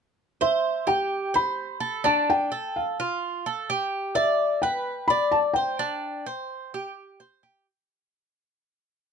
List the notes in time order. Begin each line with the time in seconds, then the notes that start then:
0.41 C5 E5
0.87 G4 G5
1.34 C5 B5
1.80 A4
2.04 D4 A5
2.30 G5
2.52 A4
2.76 F5
3.00 F4
3.46 A4
3.70 G4
4.15 D5 E5
4.62 B4 G5
5.08 D5 B5
5.32 A5
5.54 C5 G5
5.79 D4
6.26 C5
6.74 G4
7.20 C5
7.43 G4